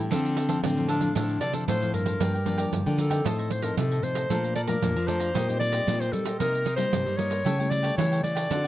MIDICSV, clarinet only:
0, 0, Header, 1, 2, 480
1, 0, Start_track
1, 0, Key_signature, -2, "minor"
1, 0, Tempo, 524934
1, 101, Time_signature, 4, 2, 24, 8
1, 7932, End_track
2, 0, Start_track
2, 0, Title_t, "Clarinet"
2, 0, Program_c, 0, 71
2, 107, Note_on_c, 0, 60, 99
2, 549, Note_off_c, 0, 60, 0
2, 581, Note_on_c, 0, 60, 95
2, 812, Note_on_c, 0, 62, 93
2, 826, Note_off_c, 0, 60, 0
2, 1055, Note_off_c, 0, 62, 0
2, 1064, Note_on_c, 0, 62, 78
2, 1280, Note_off_c, 0, 62, 0
2, 1286, Note_on_c, 0, 74, 96
2, 1396, Note_off_c, 0, 74, 0
2, 1543, Note_on_c, 0, 72, 95
2, 1763, Note_off_c, 0, 72, 0
2, 1769, Note_on_c, 0, 70, 87
2, 2455, Note_off_c, 0, 70, 0
2, 2734, Note_on_c, 0, 69, 86
2, 3211, Note_on_c, 0, 72, 82
2, 3225, Note_off_c, 0, 69, 0
2, 3319, Note_on_c, 0, 70, 82
2, 3333, Note_off_c, 0, 72, 0
2, 3446, Note_off_c, 0, 70, 0
2, 3455, Note_on_c, 0, 69, 87
2, 3686, Note_on_c, 0, 72, 98
2, 3700, Note_off_c, 0, 69, 0
2, 4158, Note_off_c, 0, 72, 0
2, 4163, Note_on_c, 0, 74, 88
2, 4220, Note_off_c, 0, 74, 0
2, 4275, Note_on_c, 0, 70, 91
2, 4637, Note_on_c, 0, 72, 95
2, 4651, Note_off_c, 0, 70, 0
2, 5110, Note_off_c, 0, 72, 0
2, 5116, Note_on_c, 0, 74, 105
2, 5489, Note_on_c, 0, 72, 97
2, 5503, Note_off_c, 0, 74, 0
2, 5595, Note_on_c, 0, 69, 88
2, 5608, Note_off_c, 0, 72, 0
2, 5834, Note_off_c, 0, 69, 0
2, 5840, Note_on_c, 0, 70, 101
2, 6177, Note_off_c, 0, 70, 0
2, 6183, Note_on_c, 0, 72, 96
2, 6556, Note_on_c, 0, 73, 89
2, 6570, Note_off_c, 0, 72, 0
2, 7038, Note_on_c, 0, 74, 101
2, 7051, Note_off_c, 0, 73, 0
2, 7284, Note_off_c, 0, 74, 0
2, 7290, Note_on_c, 0, 73, 98
2, 7518, Note_off_c, 0, 73, 0
2, 7529, Note_on_c, 0, 74, 96
2, 7932, Note_off_c, 0, 74, 0
2, 7932, End_track
0, 0, End_of_file